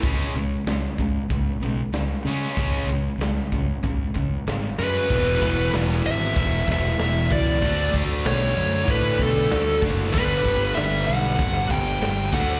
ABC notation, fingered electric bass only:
X:1
M:4/4
L:1/8
Q:1/4=95
K:C#phr
V:1 name="Fingered electric bass" clef=bass
C,, C,, C,, C,, C,, B,,, C,, C, | C,, C,, C,, C,, C,, C,, G,,, F,, | E,,, E,,, E,,, G,,, E,,, E,,, E,,, C,, | D,, D,, B,,, F,, A,, B,,, D,, F,,, |
=G,,, G,,, G,,, B,,, G,,, G,,, G,,, D,, |]